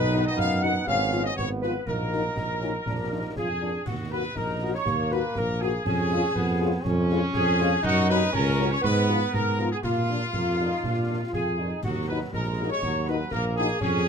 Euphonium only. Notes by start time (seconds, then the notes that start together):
Already playing: D#4
0.87 C#4
1.38 B3
1.87 A#3
2.36 D#4
2.61 C#4
2.87 D4
3.11 D#4
3.38 F4
3.62 D4